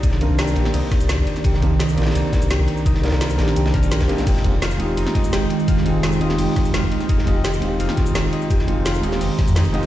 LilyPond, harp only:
\new Staff \with { instrumentName = "Harp" } { \time 4/4 \key f \dorian \tempo 4 = 170 d'8 r8 g'8 r8 ees'8 d'8 d'8 r8 | g'8 r8 ees'8 d'8 d'8 r8 g'8 r8 | ees'8 d'8 d'8 r8 g'8 bes'8 bes'8 g'8 | g'8 r8 f'8 ees'8 ees'8 ees''8 g'8 r8 |
f'8 ees'8 ees'8 ees''8 g'8 r8 f'8 ees'8 | ees'8 ees''8 g'8 r8 f'8 ees'8 ees'8 ees''8 | g'8 r8 f'8 ees'8 ees'8 r8 ees'8 ees''8 | }